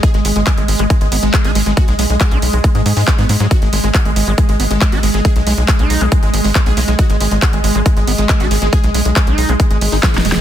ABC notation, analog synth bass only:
X:1
M:4/4
L:1/16
Q:1/4=138
K:G#m
V:1 name="Analog synth bass" clef=bass
z G,,, G,,, G,,, z G,,, G,,, G,,, z G,,, G,,, G,,, z G,,, G,,, G,,, | z B,,, B,,, B,,, z B,,, B,,, B,,, z G,, G,, G,, z G,, G,, G,, | z G,,, G,,, G,,, z G,,, G,,, G,,, z G,,, G,,, G,,, z G,,, G,,, G,,, | z B,,, B,,, B,,, z B,,, B,,, B,,, z G,,, G,,, G,,, z B,,, B,,, B,,, |
z G,,, G,,, G,,, z G,,, G,,, G,,, z G,,, G,,, G,,, z G,,, G,,, G,,, | z B,,, B,,, B,,, z B,,, B,,, B,,, z G,,, G,,, G,,, z D,,, D,,, D,,, |]